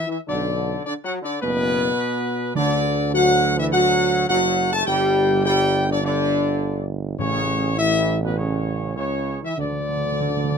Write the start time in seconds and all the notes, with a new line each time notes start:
0.06 E3 E4 E5
0.27 B1 D3 D4 D5
0.84 D3 D4 D5
1.03 F#3 F#4 F#5
1.22 D3 D4 D5
1.40 F#1 B2 B3 B4
2.55 D2 D3 D4 D5
3.13 F#3 F#4 F#5
3.59 E3 E4 E5
3.71 F#3 F#4 F#5
4.27 F#1 F#3 F#4 F#5
4.71 A3 A4 A5
4.85 G1 G3 G4 G5
5.45 G3 G4 G5
5.89 D3 D4 D5
6.02 D3 D4 D5
7.18 A1 A2 C#3 C#4 C#5
7.77 E3 E4 E5
8.22 B2 B3 B4
8.36 C#3 C#4 C#5
8.96 C#2 C#3 C#4 C#5
9.42 E3 E4 E5
9.57 D2 D3 D4 D5
9.65 D3
9.72 D3
9.80 D3
9.89 D3
9.96 D3
10.05 D3
10.12 D3
10.21 D3
10.28 D3
10.36 D3
10.44 D3
10.52 D3